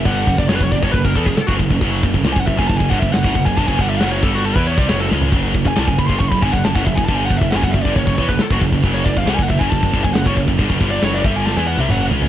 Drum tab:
CC |x-x-x-x-x-x-x-x-|x-x-x-x-x-x-x-x-|x-x-x-x-x-x-x---|x-x-x-x-x-x-x-x-|
SD |----o-------o---|----o-------o---|----o-------o-o-|----o-------o---|
T1 |----------------|----------------|----------------|----------------|
T2 |----------------|----------------|----------------|----------------|
FT |----------------|----------------|---------------o|----------------|
BD |o-oo-ooooooo-ooo|o-oo-ooooooo-ooo|ooo---o--o-o----|o-oo-ooooooo-ooo|

CC |x-x-x-x-x-x-x-x-|x-x-x-x-x-x-x-x-|x-x-x-x---------|
SD |----o-------o---|----o-------o---|----o---oo------|
T1 |----------------|----------------|-----------o----|
T2 |----------------|----------------|------------o---|
FT |----------------|----------------|--------------oo|
BD |o-oo-ooooooo-ooo|o-oo-ooooooo-ooo|ooo---o---------|